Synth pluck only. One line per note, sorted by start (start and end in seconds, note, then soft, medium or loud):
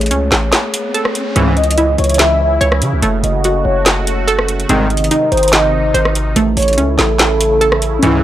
0.00 1.36 A3 medium
0.11 1.35 C#4 medium
0.94 1.36 A4 medium
1.36 3.03 C#4 medium
1.78 3.03 E4 medium
2.61 3.03 C#5 loud
3.02 4.69 A3 medium
3.45 4.70 F#4 medium
4.28 4.69 A4 loud
4.70 6.36 C4 medium
5.11 6.36 D#4 medium
5.94 6.36 C5 loud
6.36 8.03 A3 medium
6.78 8.02 C#4 medium
7.61 8.03 A4 medium
8.03 8.23 C#4 medium